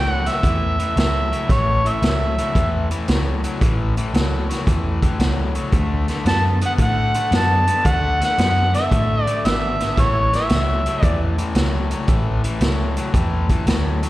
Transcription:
Already playing: C#2 A2 F#3 G5
0.10 F#5
0.25 A2 F#3 E5, snare, closed hi-hat
0.43 E2 A2 E3, kick, closed hi-hat
0.79 A2 E3, closed hi-hat
0.96 C#2 A2 F#3 E5, snare, closed hi-hat
1.32 A2 F#3, closed hi-hat
1.48 A1 A2 E3, kick, snare, closed hi-hat
1.52 C#5
1.85 A2 E3 E5, closed hi-hat
2.02 C#2 A2 F#3, snare, closed hi-hat
2.38 A2 F#3, closed hi-hat
2.55 E2 A2 E3, kick, closed hi-hat
2.91 A2 E3, closed hi-hat
3.08 C#2 A2 F#3, snare, closed hi-hat
3.44 A2 F#3, closed hi-hat
3.61 A1 A2 E3, kick, closed hi-hat
3.97 A2 E3, closed hi-hat
4.14 C#2 A2 F#3, snare, closed hi-hat
4.49 A2 F#3, snare, closed hi-hat
4.67 E2 A2 E3, kick, closed hi-hat
5.02 A2 E3, kick, closed hi-hat
5.19 C#2 A2 F#3, snare, closed hi-hat
5.55 A2 F#3, closed hi-hat
5.72 D2 D3 A3, kick, closed hi-hat
6.08 D3 A3, snare, closed hi-hat
6.25 F#2 D3 B3 A5, snare, closed hi-hat
6.61 D3 B3, closed hi-hat
6.66 F#5
6.78 A2 D3 A3, kick, closed hi-hat
6.83 F#5
7.14 D3 A3, closed hi-hat
7.31 F#2 D3 B3, snare, closed hi-hat
7.37 A5
7.67 D3 B3, closed hi-hat
7.85 D2 D3 A3 F#5, kick, closed hi-hat
8.20 D3 A3, snare, closed hi-hat
8.25 F#5
8.38 F#2 D3 B3, snare, closed hi-hat
8.73 D3 B3 E5, snare, closed hi-hat
8.91 A2 D3 A3, kick, closed hi-hat
9.23 D3 D5
9.27 A3, closed hi-hat
9.44 G#1 D3 B3 E5, snare, closed hi-hat
9.80 D3 B3, snare, closed hi-hat
9.97 A1 A2 E3 C#5, kick, snare, closed hi-hat
10.32 A2 E3 E5, snare, closed hi-hat
10.49 C#2 A2 F#3, snare, closed hi-hat
10.86 A2 F#3, closed hi-hat
11.03 E2 A2 E3 D5, kick, closed hi-hat
11.38 A2 E3, closed hi-hat
11.55 C#2 A2 F#3, snare, closed hi-hat
11.91 A2 F#3, closed hi-hat
12.08 A1 A2 E3, kick, closed hi-hat
12.44 A2 E3, closed hi-hat
12.61 C#2 A2 F#3, snare, closed hi-hat
12.97 A2 F#3, closed hi-hat
13.14 E2 A2 E3, kick, closed hi-hat
13.49 A2 E3, kick, closed hi-hat
13.66 D2 A2 F#3, snare, closed hi-hat
14.03 A2 F#3, closed hi-hat

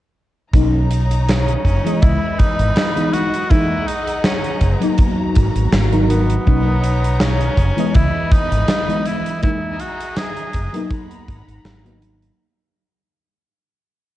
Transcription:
0.53 B1 F#3 A#3 C#4 D#4 C#5 A#5, kick, closed hi-hat
0.91 closed hi-hat
1.11 closed hi-hat
1.28 C#4, snare, closed hi-hat
1.48 closed hi-hat
1.65 F#1, kick, closed hi-hat
1.84 E3 G#3 B3 D#5, closed hi-hat
2.01 C#2 E3 E4 D#5 B5, kick, closed hi-hat
2.39 D#4, kick, closed hi-hat
2.59 G#1, closed hi-hat
2.76 snare, closed hi-hat
2.96 E3 G#3 B3 D#4, closed hi-hat
3.13 F#4, closed hi-hat
3.34 closed hi-hat
3.49 E3 G#3 A#3 D#4 E4 G#4 F#5 A#5, kick, closed hi-hat
3.87 D#4, closed hi-hat
4.07 closed hi-hat
4.24 C#4, snare, closed hi-hat
4.44 closed hi-hat
4.61 F#1, kick, closed hi-hat
4.80 F#3 A#3 B3 D#4, closed hi-hat
4.98 F#4, kick, closed hi-hat
5.35 G#1, kick, closed hi-hat
5.56 G#1, closed hi-hat
5.72 G#1, snare, closed hi-hat
5.92 F#3 B3 D#4 A#4, closed hi-hat
6.10 B3, closed hi-hat
6.30 closed hi-hat
6.46 B1 F#3 A#3 C#4 D#4 C#5 A#5, kick, closed hi-hat
6.84 closed hi-hat
7.04 closed hi-hat
7.20 C#4, snare, closed hi-hat
7.41 closed hi-hat
7.57 F#1, kick, closed hi-hat
7.76 E3 G#3 B3 D#5, closed hi-hat
7.95 C#2 E3 E4 D#5 B5, kick, closed hi-hat
8.32 D#4, kick, closed hi-hat
8.52 G#1, closed hi-hat
8.68 snare, closed hi-hat
8.88 E3 G#3 B3 D#5, closed hi-hat
9.05 E4, closed hi-hat
9.26 closed hi-hat
9.42 E3 G#3 A#3 D#4 E4 G#4 D#5 E5 A#5, kick, closed hi-hat
9.80 F#4, closed hi-hat
10.01 closed hi-hat
10.16 G#4, snare, closed hi-hat
10.37 closed hi-hat
10.53 F#1, kick, closed hi-hat
10.73 F#3 A#3 B3 D#4, closed hi-hat
10.90 F#5 A#5 B5, kick, closed hi-hat
11.11 closed hi-hat
11.28 G#1, kick, closed hi-hat
11.48 G#1, closed hi-hat
11.64 G#1, snare, closed hi-hat
11.84 F#3 A#3 B3 D#4, closed hi-hat
12.01 F#3 A#3 B3 D#4, closed hi-hat
12.22 closed hi-hat

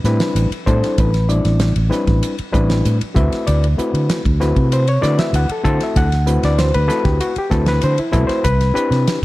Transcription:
0.04 A2 G3 C4 D4 E4 B4, snare, hi-hat pedal
0.20 snare, ride
0.35 A1, hi-hat pedal, ride
0.52 ride
0.66 A2 G3 C4 D4 E4 A4 C5, kick, hi-hat pedal
0.84 snare, ride
0.98 A1 B4, kick, hi-hat pedal, ride
1.14 snare, ride
1.29 G3 C4 D4 E4 D5, hi-hat pedal
1.45 A1, snare, ride
1.60 snare, hi-hat pedal, ride
1.76 A1, ride
1.89 G3 C4 D4 E4 B4, snare, hi-hat pedal
2.07 A1, kick, snare, ride
2.23 hi-hat pedal, ride
2.38 muted fretless electric bass stroke, ride
2.52 A1 G3 C4 D4 E4 B4, kick, hi-hat pedal
2.70 snare, ride
2.85 A2, hi-hat pedal, ride
3.01 muted fretless electric bass stroke, ride
3.14 D2 A3 C4 E4 F#4 B4 E5, kick, hi-hat pedal
3.32 muted fretless electric bass stroke, snare, ride
3.47 D2 D5, hi-hat pedal, ride
3.64 ride
3.77 A3 C4 E4 F#4 B4, muted fretless electric bass stroke, hi-hat pedal
3.94 D3, ride
4.10 snare, hi-hat pedal, ride
4.25 D2, kick, ride
4.40 A3 C4 E4 F#4 B4, snare, hi-hat pedal
4.56 C3, kick, ride
4.72 C5, hi-hat pedal, ride
4.88 C#5, ride
5.01 D3 A3 C4 E4 F#4 B4 D5, snare, hi-hat pedal
5.19 E5, snare, ride
5.33 D2 F#5, hi-hat pedal, ride
5.49 A4, muted fretless electric bass stroke, ride
5.64 D3 A3 C4 E4 F#4 A4 C5, kick, hi-hat pedal
5.80 E5, snare, ride
5.96 D2 F#5, kick, hi-hat pedal, ride
6.12 snare, ride
6.26 A3 C4 E4 F#4 B4, hi-hat pedal
6.43 D2 D5, snare, ride
6.58 C5, snare, hi-hat pedal, ride
6.74 D2 B4, ride
6.88 A3 C4 E4 F#4 A4 B4, snare, hi-hat pedal
7.05 D2 G4, kick, snare, ride
7.21 F#4, hi-hat pedal, ride
7.36 G4, muted fretless electric bass stroke, ride
7.50 D2 A3 C4 E4 F#4 A4 B4, kick, snare, hi-hat pedal
7.66 B4, snare, ride
7.82 D3 C5, hi-hat pedal, ride
7.98 E4, muted fretless electric bass stroke, ride
8.12 C2 A3 C4 E4 F#4 A4 B4, kick, hi-hat pedal
8.27 C5, muted fretless electric bass stroke, snare, ride
8.44 C2 B4, kick, hi-hat pedal, ride
8.61 snare, ride
8.74 C4 D4 E4 G4 B4, muted fretless electric bass stroke, hi-hat pedal
8.91 C3, snare, ride
9.07 snare, hi-hat pedal, ride

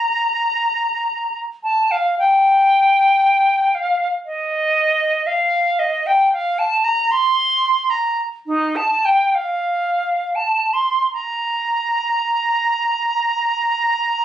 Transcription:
Already playing: A#5
1.63 A5
1.91 F5
2.18 G5
3.75 F5
4.25 D#5
5.26 F5
5.79 D#5
6.06 G5
6.33 F5
6.58 A5
6.84 A#5
7.11 C6
7.90 A#5
8.46 D#4
8.76 A5
9.05 G5
9.35 F5
10.35 A5
10.73 C6
11.13 A#5

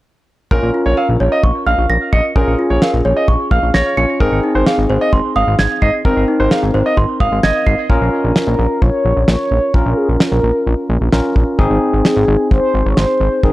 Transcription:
0.51 A#1 C#4 F4 A#4, kick
0.63 A#1
0.74 F4
0.86 A#1 C#5
0.97 A#4 F5
1.09 A#1
1.20 A#1 C#5
1.32 D#5
1.43 A#1 C#6, kick
1.67 A#1 F5 F6
1.78 A#1
1.90 A#1 A#6
2.13 A#1 D#5 C#7, kick
2.36 A#1 C#4 F4 G#4 A#4, kick
2.47 A#1
2.59 F4
2.70 A#1 C#5
2.82 A#4 F5, snare
2.94 A#1
3.05 A#1 C#5
3.17 D#5
3.28 A#1 C#6, kick
3.51 A#1 F5 F6, kick
3.63 A#1
3.74 A#1 C#5 A#6, snare
3.97 A#1 C#4 F4 C#5 C#7
4.20 G#1 C4 D#4 G#4 A#4, kick
4.32 G#1
4.43 D#4
4.55 G#1 C5
4.67 G#4 F5, snare
4.78 G#1
4.90 G#1 C5
5.01 D#5
5.13 G#1 C6, kick
5.36 G#1 F5 D#6
5.47 G#1
5.59 G#1 G#6, snare
5.82 G#1 D#5 C7, kick
6.05 G#1 C4 D#4 A#4, kick
6.17 G#1
6.28 D#4
6.40 G#1 C5
6.51 G#4 F5, snare
6.63 G#1
6.74 G#1 C5
6.86 D#5
6.97 G#1 C6, kick
7.20 G#1 F5 D#6, kick
7.32 G#1
7.43 G#1 D#5 G#6, snare
7.66 G#1 C7, kick
7.90 A#1 C#4 F4 A#4, kick
8.01 A#1
8.24 A#1
8.36 A#4, snare
8.47 A#1
8.59 A#1
8.82 A#1 C#5, kick
9.05 A#1
9.16 A#1
9.28 A#1 C#5, snare
9.51 A#1
9.74 A#1 C#4 F4 A#4, kick
9.86 A#1
9.97 G#4
10.09 A#1
10.20 A#4, snare
10.32 A#1
10.43 A#1
10.67 A#1
10.89 A#1
11.01 A#1
11.12 A#1 C#4 F4 A#4, snare
11.36 A#1, kick
11.59 G#1 C4 D#4 G#4, kick
11.70 G#1
11.93 G#1
12.05 G#4, snare
12.16 G#1
12.28 G#1
12.51 G#1 C5, kick
12.74 G#1
12.86 G#1
12.90 C#5
12.97 G#1 C5, snare
13.20 G#1
13.43 G#1 C4 D#4 G#4 A#4, kick

